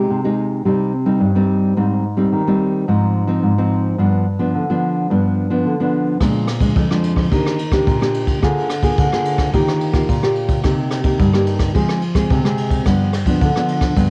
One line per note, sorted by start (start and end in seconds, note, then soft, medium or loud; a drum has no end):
0.00 0.20 G#3 medium
0.00 0.20 D#4 medium
0.00 0.20 G4 medium
0.10 0.63 C3 medium
0.24 0.62 G#3 medium
0.24 0.62 D#4 medium
0.24 0.62 G4 medium
0.65 1.18 C3 medium
0.65 0.92 G3 medium
0.65 0.92 C4 medium
0.65 0.92 D#4 medium
1.06 1.30 G3 medium
1.06 1.30 C4 medium
1.06 1.30 D#4 medium
1.20 1.74 G2 medium
1.35 1.73 G3 medium
1.35 1.73 C4 medium
1.35 1.73 D#4 medium
1.77 2.30 G#2 medium
1.77 2.03 G3 medium
1.77 2.03 C4 medium
1.77 2.03 D#4 medium
2.17 2.41 G3 medium
2.17 2.41 C4 medium
2.17 2.42 D#4 medium
2.33 2.85 D#3 medium
2.47 2.84 G3 medium
2.47 2.84 C4 medium
2.47 2.84 D#4 medium
2.88 3.41 G#2 medium
2.88 3.25 F3 medium
2.88 3.25 C4 medium
2.88 3.26 D#4 medium
3.27 3.52 F3 medium
3.27 3.52 C4 medium
3.27 3.52 D#4 medium
3.43 3.96 G#2 medium
3.58 3.95 F3 medium
3.58 3.95 C4 medium
3.58 3.95 D#4 medium
3.98 4.51 G2 medium
3.98 4.25 F3 medium
3.98 4.25 B3 medium
3.98 4.25 D4 medium
4.39 4.63 F3 medium
4.39 4.63 B3 medium
4.39 4.64 D4 medium
4.55 5.07 D3 medium
4.70 5.06 F3 medium
4.70 5.06 B3 medium
4.70 5.06 D4 medium
5.10 5.63 G2 medium
5.10 5.47 F3 medium
5.10 5.47 B3 medium
5.10 5.48 D4 medium
5.50 5.74 F3 medium
5.50 5.74 B3 medium
5.50 5.74 D4 medium
5.65 6.18 D3 medium
5.80 6.17 F3 medium
5.80 6.17 B3 medium
5.80 6.17 D4 medium
6.20 6.73 A#2 medium
6.20 6.47 F3 medium
6.20 6.47 G#3 medium
6.20 6.47 D4 medium
6.20 kick medium
6.20 cross-stick medium
6.20 ride soft
6.48 cross-stick medium
6.48 ride medium
6.61 6.85 F3 medium
6.61 6.85 G#3 medium
6.61 6.85 D4 medium
6.61 kick medium
6.61 ride medium
6.76 7.29 F2 medium
6.76 kick medium
6.76 ride soft
6.91 7.28 F3 medium
6.91 7.28 G#3 medium
6.91 7.28 D4 medium
6.91 cross-stick medium
7.04 ride soft
7.16 kick medium
7.16 cross-stick medium
7.16 ride soft
7.31 7.84 D#3 medium
7.31 7.57 A#3 medium
7.31 7.58 D4 medium
7.31 7.58 G4 medium
7.31 kick medium
7.31 ride medium
7.46 cross-stick medium
7.59 ride soft
7.72 7.96 A#3 medium
7.72 7.96 D4 medium
7.72 7.96 G4 medium
7.72 kick medium
7.72 cross-stick medium
7.72 ride soft
7.87 8.40 A#2 medium
7.87 kick medium
7.87 ride soft
8.01 8.38 A#3 medium
8.01 8.38 D4 medium
8.01 8.38 G4 medium
8.01 cross-stick medium
8.14 ride medium
8.27 kick medium
8.27 ride medium
8.42 8.95 D3 medium
8.42 8.68 A#3 medium
8.42 8.69 F4 medium
8.42 8.69 G#4 medium
8.42 kick medium
8.42 cross-stick medium
8.42 ride medium
8.70 cross-stick medium
8.70 ride medium
8.83 9.07 A#3 medium
8.83 9.07 F4 medium
8.83 9.07 G#4 medium
8.83 kick medium
8.83 ride medium
8.98 9.51 D3 medium
8.98 kick medium
8.98 ride medium
9.12 9.49 A#3 medium
9.12 9.49 F4 medium
9.12 9.50 G#4 medium
9.12 cross-stick medium
9.25 ride medium
9.38 kick medium
9.38 cross-stick medium
9.38 ride soft
9.54 10.06 D#3 medium
9.54 9.91 A#3 medium
9.54 9.91 F4 medium
9.54 9.91 G4 medium
9.54 kick medium
9.54 ride medium
9.68 cross-stick medium
9.81 ride medium
9.93 10.18 A#3 medium
9.93 10.18 F4 medium
9.93 10.18 G4 medium
9.93 kick medium
9.93 cross-stick medium
9.93 ride medium
10.09 10.61 A#2 medium
10.09 kick medium
10.09 ride soft
10.23 10.60 A#3 medium
10.23 10.60 F4 medium
10.23 10.60 G4 medium
10.23 cross-stick medium
10.36 ride soft
10.48 kick medium
10.48 ride soft
10.64 11.17 C3 medium
10.64 11.01 A#3 medium
10.64 11.01 D#4 medium
10.64 11.01 G4 medium
10.64 kick medium
10.64 cross-stick medium
10.64 ride soft
10.91 cross-stick medium
10.91 ride soft
11.03 11.28 A#3 medium
11.03 11.28 D#4 medium
11.03 11.28 G4 medium
11.03 kick medium
11.03 ride soft
11.19 11.72 G2 medium
11.19 kick medium
11.19 ride soft
11.33 11.71 A#3 medium
11.33 11.71 D#4 medium
11.33 11.71 G4 medium
11.33 cross-stick medium
11.46 ride soft
11.59 kick medium
11.59 cross-stick medium
11.59 ride soft
11.74 12.27 F3 medium
11.74 12.01 G#3 medium
11.74 12.01 C4 medium
11.74 12.01 G#4 medium
11.74 kick medium
11.74 ride soft
11.89 cross-stick medium
12.01 ride soft
12.15 12.39 G#3 medium
12.15 12.39 C4 medium
12.15 12.39 G#4 medium
12.15 kick medium
12.15 cross-stick medium
12.15 ride medium
12.30 12.83 C3 medium
12.30 kick medium
12.30 ride soft
12.44 12.81 G#3 medium
12.44 12.81 C4 medium
12.44 12.82 G#4 medium
12.44 cross-stick medium
12.57 ride medium
12.70 kick medium
12.70 ride medium
12.85 13.38 G2 medium
12.85 13.12 F3 medium
12.85 13.12 B3 medium
12.85 13.12 D4 medium
12.85 kick medium
12.85 cross-stick medium
12.85 ride medium
13.13 cross-stick medium
13.13 ride medium
13.26 13.50 F3 medium
13.26 13.50 B3 medium
13.26 13.50 D4 medium
13.26 kick medium
13.26 ride medium
13.41 13.94 D3 medium
13.41 kick medium
13.41 ride soft
13.56 13.93 F3 medium
13.56 13.93 B3 medium
13.56 13.93 D4 medium
13.56 cross-stick medium
13.68 ride soft
13.81 kick medium
13.81 cross-stick medium
13.81 ride medium
13.96 14.10 G2 medium
13.96 14.10 F3 medium
13.96 14.10 B3 medium
13.96 14.10 D4 medium
13.96 kick medium
13.96 ride medium